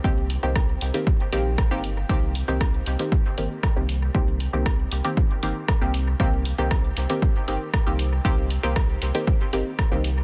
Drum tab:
HH |--x---xx--x---x-|--x---xx--x---x-|--x---xx--x---x-|--x---xx--x---x-|
SD |----r-------r---|----r-------r---|----r-------r---|----r-------r---|
BD |o---o---o---o---|o---o---o---o---|o---o---o---o---|o---o---o---o---|

HH |--x---xx--x---x-|
SD |----r-------r---|
BD |o---o---o---o---|